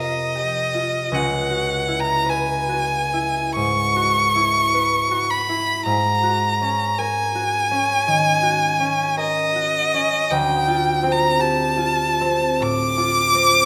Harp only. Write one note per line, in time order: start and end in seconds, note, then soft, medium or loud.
0.00 0.37 F2 soft
0.00 1.18 C3 soft
0.00 0.73 F4 soft
0.00 0.34 G4 soft
0.00 1.18 A#4 soft
0.35 1.18 G4 soft
0.74 1.18 F4 soft
1.12 5.02 C#2 soft
1.50 2.68 F#4 soft
1.88 3.12 E4 soft
2.26 4.73 B4 soft
2.69 3.95 F#4 soft
3.13 4.34 E4 soft
3.56 5.84 G#2 soft
3.96 5.10 F#4 soft
4.35 5.48 E4 soft
4.74 5.91 B4 soft
5.11 6.22 F#4 soft
5.49 5.91 E4 soft
5.86 9.76 G#2 soft
6.23 7.34 F#4 soft
6.61 7.70 C#4 soft
6.99 9.16 A#4 soft
7.35 8.42 F#4 soft
7.71 8.79 C#4 soft
8.07 10.36 D#3 soft
8.43 9.54 F#4 soft
8.80 9.93 C#4 soft
9.17 10.35 A#4 soft
9.56 10.36 F#4 soft
9.94 10.36 C#4 soft
10.31 13.65 D2 soft
10.68 11.76 F4 soft
11.03 12.20 C4 soft
11.39 13.65 G4 soft
11.77 12.96 F4 soft
12.21 13.34 C4 soft
12.60 13.65 A2 soft
12.98 13.65 F4 soft
13.35 13.65 C4 soft